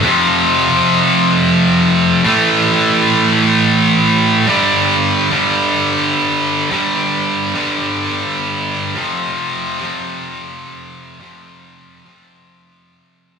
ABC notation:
X:1
M:4/4
L:1/8
Q:1/4=107
K:Gmix
V:1 name="Distorted electric guitar" clef=bass
[F,,C,F,]8 | [A,,E,A,]8 | [G,,D,G,]3 [G,,D,G,]4- [G,,D,G,] | [G,,D,G,]3 [G,,D,G,]4- [G,,D,G,] |
[F,,C,F,]3 [F,,C,F,]4- [F,,C,F,] | [F,,C,F,]3 [F,,C,F,]4- [F,,C,F,] |]